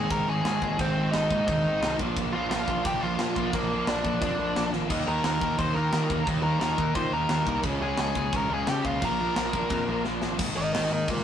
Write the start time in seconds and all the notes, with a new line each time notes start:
Already playing: G#2 D#3 G#3 C4 D#4 G#5
0.10 G#1 G#2 D#3 G#3 C4 D#4 A#4 A#5, kick, crash
0.27 G#1 G#2 D#3 G#3 C4 D#4 G#4 G#5
0.44 G#2 D#3 G#3 C4 D#4, snare, crash
0.61 G#1 G#2 D#3 G#3 C4 D#4, kick
0.79 G#1 G#2 D#3 G#3 C4 D#4 C5, kick, crash
0.97 G#2 D#3 G#3 C4 D#4
1.11 G#1 G#2 D#3 D#4 D#5, snare, crash
1.15 G#3 C4 D#4
1.30 G#1 G#2 D#3 G#3 C4 D#4, kick
1.46 D#2 G#2 D#3 G#3 C4 D#4 D#5, kick, crash
1.64 G#1 G#2 D#3 G#3 C4 D#4
1.81 C2 G#2 D#3 G#3 C4 D#4, snare, crash
1.98 A#1 A#2 D3 F3 A#3 D4, kick
2.15 A#1 A#2 D3 F3 A#3 D4, kick, crash
2.32 A#1 A#2 D3 F3 A#3 D4 F4 F5
2.49 A#1 A#2 D3 F3 A#3 D4 F4 F5, snare, crash
2.66 A#1 A#2 D3 F3 A#3 D4, kick
2.83 A#1 A#2 D3 F3 A#3 D4 G4 G5, kick, crash
3.01 A#1 A#2 D3 F3 A#3 D4 F4 F5
3.18 A#2 D3 F3 A#3 D4, snare, crash
3.36 A#1 A#2 D3 F3 A#3 D4, kick
3.53 A#1 A#2 D3 F3 A#3 D4 A#4, kick, crash
3.71 A#2 D3 F3 A#3 D4
3.87 A#1 A#2 D3 F3 A#3 D4 D5, snare, crash
4.04 A#1 A#2 D3 F3 A#3 D4, kick
4.21 F2 A#2 D3 F3 A#3 D4 D5, kick, crash
4.37 A#1 A#2 D3 F3 A#3 D4
4.55 A#1 A#2 D3 F3 A#3 D4, snare, crash
4.71 G#1 A#2 D3 F3 A#3 D4, snare
4.89 D#2 D#3 G3 A#3 D#4, kick, crash
5.07 D#2 D#3 G3 A#3 D#4 A#4 A#5
5.23 D#2 D#3 G3 A#3 D#4 A#4 A#5, snare, crash
5.40 D#2 D#3 G3 A#3 D#4, kick
5.57 D#2 D#3 G3 A#3 D#4 C5 C6, kick, crash
5.74 D#2 D#3 G3 A#3 D#4 A#4 A#5
5.92 D#3 G3 A#3 D#4, snare, crash
6.09 D#2 D#3 G3 A#3 D#4, kick
6.26 D#2 D#3 G3 A#3 D#4, kick, crash
6.42 D#3 G3 A#3 D#4 A#4 A#5
6.60 D#2 D#3 G3 A#3 D#4 A#4 A#5, snare, crash
6.78 D#2 D#3 G3 A#3 D#4, kick
6.94 A#2 D#3 G3 A#3 D#4 C5 C6, kick, crash
7.12 D#2 D#3 G3 A#3 D#4 A#4 A#5
7.29 D#2 D#3 G3 A#3 D#4, snare, crash
7.47 C2 D#3 G3 A#3 D#4, kick
7.63 C#2 C#3 F3 G#3 C#4, kick, crash
7.80 C#2 C#3 F3 G#3 C#4 G#4 G#5
7.97 C#2 C#3 F3 G#3 C#4 G#5, snare, crash
8.01 G#4
8.15 C#2 C#3 F3 G#3 C#4, kick
8.32 C#2 C#3 F3 G#3 C#4 A#4, kick, crash
8.37 A#5
8.49 C#2 C#3 F3 G#3 C#4 G#4
8.54 G#5
8.66 C#3 F3 G#3 C#4 G5, snare, crash
8.71 G4
8.84 C#2 C#3 F3 G#3 C#4 F4 F5, kick
9.01 A#1 A#2 F3 A#3 D4 A#5, kick, crash
9.06 A#4
9.19 A#2 F3 A#3 D4
9.36 A#1 A#2 F3 A#3 D4, snare, crash
9.53 A#1 A#2 F3 A#3 D4, kick
9.70 F2 A#2 F3 A#3 D4, kick, crash
9.88 A#1 A#2 F3 A#3 D4
10.05 A#1 A#2 F3 A#3 D4, snare
10.21 G#1 A#2 F3 A#3 D4, snare
10.39 G#1 G#2 D#3 G#3, kick, crash
10.56 G#1 G#2 D#3 A#4 D#5, crash
10.72 G#1 G#2 D#3 G#3 A#4 D#5, snare, crash
10.91 G#1 G#2 D#3 A#4 D#5, crash
11.08 G#1 G#2 D#3 F4 A#4, kick, crash